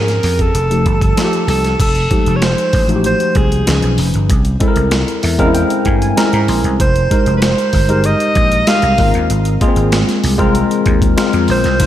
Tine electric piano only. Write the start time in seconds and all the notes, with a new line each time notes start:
Already playing: F3 C4 C#4 G#4
0.70 F3 A3 D#4 G4
1.17 F3 A3 D#4 F4
1.24 G4
2.10 F3 G#3 D#4 G4
2.17 A3
2.88 F3 A3 D#4 F#4
2.96 G4
3.66 E3 C#4 D#4 B4
3.72 F3
4.60 G#3 C4 E4 A4
4.68 A#4
5.23 E5
5.39 G#3 C4 C#4 A#4 F5
5.46 E4
5.54 G5
5.86 G#5
6.02 G#5
6.17 G#3 C4 E4 A#4 A#5
6.49 C6
7.10 G#3 D#4 G4 A#4
7.89 G#3 D#4 G4 A#4
8.67 G#3 D#4 G4 A#4
8.99 G#3 A#3 F4 A#4
9.05 C4
9.61 G#3 A#3 F4 G#4
9.68 C4
10.38 G#3 C4 F4 A#4
11.17 G#3 C4 F4 A#4
11.80 G3 D#4 F4 C5